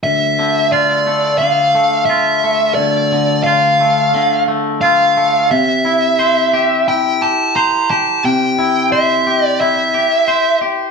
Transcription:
0.04 1.75 D2 soft
0.04 0.72 E5 medium
0.39 1.40 D3 soft
0.72 2.08 F4 soft
0.72 1.38 D5 medium
1.07 1.74 A3 soft
1.38 3.11 D3 soft
1.38 2.04 F5 medium
1.75 2.43 A3 soft
2.06 2.74 E5 medium
2.10 3.45 F4 soft
2.44 3.79 A3 soft
2.75 4.48 D2 soft
2.75 3.43 D5 medium
3.12 4.13 D3 soft
3.44 4.82 F4 soft
3.44 4.43 F5 soft
3.80 4.47 A3 soft
4.14 5.51 D3 soft
4.48 5.16 A3 soft
4.81 5.51 F4 soft
4.81 5.51 F5 soft
5.17 5.51 A3 soft
5.51 7.21 C3 soft
5.51 6.88 E5 medium
5.85 6.86 E4 soft
6.19 7.55 C5 soft
6.53 7.21 G4 soft
6.88 8.57 E4 soft
6.88 7.23 G5 medium
7.22 7.89 G4 soft
7.22 7.56 A5 medium
7.56 8.91 C5 soft
7.56 7.90 A#5 medium
7.90 9.26 G4 soft
7.90 8.22 A5 medium
8.24 9.94 C3 soft
8.24 8.89 G5 medium
8.59 9.59 E4 soft
8.92 10.27 C5 soft
8.92 9.45 E5 medium
9.27 9.93 G4 soft
9.45 9.60 D5 medium
9.61 10.91 E4 soft
9.61 10.58 E5 soft
9.94 10.60 G4 soft
10.28 10.91 C5 soft
10.61 10.91 G4 soft

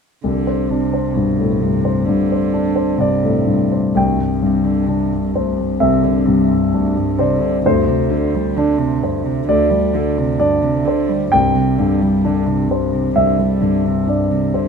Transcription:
0.24 2.04 C2 soft
0.24 0.71 D3 soft
0.47 0.84 C5 soft
0.70 1.16 C3 soft
0.70 1.07 D4 soft
0.93 1.30 C5 soft
1.15 1.53 G2 soft
1.15 1.63 B2 soft
1.39 1.62 A2 soft
1.61 1.99 G2 soft
1.61 2.06 C3 soft
1.85 2.22 C5 soft
2.05 2.45 G2 soft
2.05 3.00 D3 soft
2.32 2.68 C5 soft
2.54 2.91 D4 soft
2.76 3.14 C5 soft
2.98 3.37 G2 soft
2.98 3.75 C3 soft
2.98 3.93 D5 medium
3.23 3.48 A2 soft
3.47 3.86 G2 soft
3.72 3.96 C5 soft
3.95 5.77 C2 soft
3.95 4.22 D2 soft
3.95 5.78 G5 soft
4.20 4.46 G2 soft
4.42 5.17 G2 soft
4.42 4.68 C3 soft
4.66 4.88 D3 soft
4.87 5.13 C3 soft
4.87 5.63 D4 soft
5.11 5.38 G2 soft
5.35 5.62 D2 soft
5.35 6.09 C5 soft
5.60 5.81 G2 soft
5.80 7.61 C2 soft
5.80 6.05 C3 soft
5.80 7.15 E5 medium
6.04 6.28 D3 soft
6.26 7.01 G2 soft
6.26 6.53 C3 soft
6.51 6.75 G2 soft
6.74 6.99 D2 soft
6.74 7.47 D4 soft
6.97 7.20 G2 soft
7.18 7.43 C3 soft
7.18 7.65 C5 soft
7.18 7.62 D5 soft
7.41 7.65 D3 soft
7.65 9.45 D2 soft
7.65 7.89 G2 soft
7.65 9.02 C5 medium
7.87 8.11 C3 soft
8.10 8.36 D3 soft
8.10 8.85 D3 soft
8.35 8.58 G3 soft
8.57 8.80 D3 soft
8.57 9.31 D4 soft
8.79 9.04 C3 soft
9.03 9.26 G2 soft
9.03 9.76 C5 soft
9.24 9.47 C3 soft
9.48 11.29 D2 soft
9.48 9.72 D3 soft
9.48 10.36 D5 medium
9.70 9.95 G3 soft
9.93 10.20 D3 soft
9.93 10.68 D3 soft
10.18 10.41 C3 soft
10.39 10.63 G2 soft
10.39 11.15 D4 soft
10.39 11.29 D5 medium
10.62 10.86 C3 soft
10.84 11.10 D3 soft
10.84 11.34 C5 soft
11.08 11.30 G3 soft
11.31 13.12 C2 soft
11.31 11.56 G2 soft
11.31 13.11 G5 medium
11.55 11.80 C3 soft
11.78 12.53 G2 soft
11.78 12.03 D3 soft
12.01 12.27 G3 soft
12.25 12.48 D3 soft
12.25 12.98 D4 soft
12.47 12.70 C3 soft
12.69 12.94 G2 soft
12.69 13.44 C5 soft
12.93 13.15 C3 soft
13.15 14.68 C2 soft
13.15 13.40 D3 soft
13.15 14.04 E5 medium
13.38 13.62 G3 soft
13.61 14.35 G2 soft
13.61 13.87 D3 soft
13.85 14.09 C3 soft
14.07 14.32 G2 soft
14.07 14.68 D4 soft
14.07 14.68 D5 soft
14.31 14.56 C3 soft
14.54 14.68 D3 soft
14.54 14.68 C5 soft

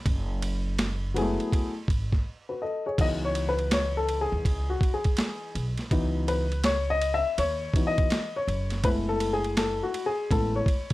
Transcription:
0.06 1.35 F#1 loud
0.06 kick loud
0.06 ride medium
0.42 ride medium
0.79 snare loud
0.79 hi-hat pedal medium
0.79 ride medium
1.14 1.70 F#3 medium
1.14 1.24 G#3 soft
1.14 1.71 B3 medium
1.14 1.72 E4 medium
1.14 1.72 G#4 medium
1.14 ride medium
1.22 1.74 A3 medium
1.40 ride soft
1.53 kick medium
1.53 ride medium
1.88 2.17 G#1 medium
1.88 kick medium
1.88 ride medium
2.13 kick medium
2.13 snare soft
2.49 2.62 F#4 soft
2.49 2.61 B4 medium
2.62 2.85 A4 soft
2.62 2.84 D#5 medium
2.86 3.21 G#4 medium
2.86 3.21 C#5 medium
2.98 4.28 C#2 loud
2.98 5.87 E3 medium
2.98 5.87 F#3 soft
2.98 5.88 B3 soft
2.98 5.88 D#4 medium
2.98 3.06 D#5 loud
2.98 kick loud
2.98 crash medium
2.98 ride medium
3.25 3.49 C#5 medium
3.35 ride medium
3.49 3.73 B4 medium
3.59 ride soft
3.71 3.95 C#5 medium
3.71 snare loud
3.71 hi-hat pedal medium
3.71 ride medium
3.97 4.22 A4 medium
4.09 ride medium
4.21 4.71 G#4 medium
4.32 4.42 D#2 medium
4.45 4.74 C#2 medium
4.45 kick medium
4.45 ride medium
4.70 4.95 F#4 medium
4.81 kick loud
4.81 ride soft
4.94 5.63 G#4 medium
5.04 kick medium
5.04 ride soft
5.17 snare loud
5.17 hi-hat pedal soft
5.17 ride medium
5.55 5.73 B1 medium
5.55 ride soft
5.77 snare soft
5.77 ride soft
5.91 7.21 C#2 loud
5.91 6.44 E3 medium
5.91 6.44 F#3 medium
5.91 6.44 B3 medium
5.91 6.44 D#4 medium
5.91 kick loud
5.91 ride medium
6.28 6.66 B4 medium
6.28 ride medium
6.52 ride soft
6.64 6.90 C#5 loud
6.64 snare loud
6.64 hi-hat pedal medium
6.64 ride medium
6.90 7.12 D#5 loud
7.02 ride medium
7.14 7.39 E5 loud
7.38 7.66 D#2 medium
7.38 7.84 C#5 loud
7.38 ride medium
7.74 8.08 E3 soft
7.74 8.08 F#3 soft
7.74 8.08 B3 soft
7.74 8.08 D#4 medium
7.74 kick medium
7.74 ride medium
7.87 8.37 D#5 loud
7.98 kick medium
7.98 ride soft
8.10 snare loud
8.10 hi-hat pedal soft
8.10 ride medium
8.36 8.86 C#5 medium
8.48 9.80 F#1 medium
8.48 ride soft
8.70 snare soft
8.70 ride soft
8.84 9.90 G#3 medium
8.84 9.90 A3 medium
8.84 9.90 B3 soft
8.84 9.90 E4 medium
8.84 8.90 B4 loud
8.84 kick loud
8.84 ride medium
9.09 9.34 A4 medium
9.20 ride medium
9.33 9.58 G#4 medium
9.44 ride soft
9.57 9.82 A4 medium
9.57 snare loud
9.57 hi-hat pedal medium
9.57 ride medium
9.83 10.07 F#4 medium
9.94 ride medium
10.06 10.31 G#4 medium
10.30 10.59 A1 medium
10.30 10.63 G#3 soft
10.30 10.63 A3 soft
10.30 10.63 B3 soft
10.30 10.64 E4 soft
10.30 10.56 A4 medium
10.30 kick medium
10.30 ride medium
10.56 10.93 C#5 medium
10.66 kick medium
10.66 ride medium
10.90 ride soft

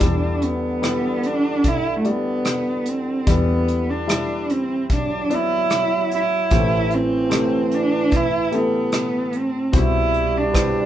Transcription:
0.00 3.23 E2 medium
0.00 4.58 D3 medium
0.00 3.23 E3 soft
0.00 0.63 G3 medium
0.00 0.45 D4 medium
0.00 0.64 E4 medium
0.00 0.64 D5 medium
0.00 kick medium
0.00 closed hi-hat medium
0.42 1.28 B3 medium
0.42 closed hi-hat soft
0.82 1.77 G3 medium
0.82 1.78 E4 soft
0.82 1.78 D5 medium
0.82 cross-stick medium
0.82 closed hi-hat medium
1.23 1.69 D4 medium
1.23 closed hi-hat soft
1.64 1.98 E4 medium
1.64 kick medium
1.64 closed hi-hat medium
1.99 2.10 A3 medium
2.05 2.99 G3 medium
2.05 2.90 B3 medium
2.05 2.99 E4 soft
2.05 3.00 D5 medium
2.05 closed hi-hat soft
2.45 cross-stick medium
2.45 closed hi-hat medium
2.86 3.30 C4 medium
2.86 closed hi-hat soft
3.27 6.47 E2 medium
3.27 6.47 E2 soft
3.27 6.47 E3 medium
3.27 3.90 G3 medium
3.27 3.91 B3 medium
3.27 3.90 E4 medium
3.27 3.90 D5 medium
3.27 kick medium
3.27 closed hi-hat medium
3.68 closed hi-hat soft
3.89 4.52 D4 medium
4.07 5.02 G3 medium
4.07 5.02 E4 soft
4.07 5.03 E5 medium
4.07 cross-stick medium
4.07 closed hi-hat medium
4.50 4.91 C4 medium
4.50 closed hi-hat soft
4.89 6.53 F#3 medium
4.89 kick medium
4.89 closed hi-hat medium
4.93 5.36 D4 medium
5.30 6.24 B3 medium
5.30 6.24 E4 soft
5.30 6.24 D5 medium
5.30 closed hi-hat soft
5.34 6.13 E4 medium
5.70 cross-stick medium
5.70 closed hi-hat medium
6.11 6.96 E4 medium
6.11 closed hi-hat soft
6.50 9.70 A1 medium
6.50 9.70 A2 medium
6.50 9.47 E3 medium
6.50 7.14 A3 medium
6.50 7.14 G4 medium
6.50 7.14 C5 medium
6.50 kick medium
6.50 closed hi-hat medium
6.91 7.76 C4 medium
6.91 closed hi-hat soft
7.30 8.24 A3 medium
7.30 8.24 G4 medium
7.30 8.24 C5 medium
7.30 cross-stick medium
7.30 closed hi-hat medium
7.71 8.17 D4 medium
7.71 closed hi-hat soft
8.11 kick medium
8.11 closed hi-hat medium
8.16 8.56 E4 medium
8.51 9.46 A3 medium
8.51 9.38 B3 medium
8.51 9.45 G4 medium
8.51 9.46 A4 medium
8.51 closed hi-hat soft
8.92 cross-stick medium
8.92 closed hi-hat medium
9.33 9.78 C4 medium
9.33 closed hi-hat soft
9.72 10.86 C2 medium
9.72 10.36 B2 medium
9.72 10.86 C3 medium
9.72 10.86 G3 medium
9.72 10.36 E4 medium
9.72 10.36 C5 medium
9.72 kick medium
9.72 closed hi-hat medium
9.77 10.39 E4 medium
10.14 closed hi-hat soft
10.37 10.86 D4 medium
10.53 10.86 E4 soft
10.53 10.86 B4 medium
10.53 10.86 C5 medium
10.53 kick medium
10.53 cross-stick medium
10.53 closed hi-hat medium

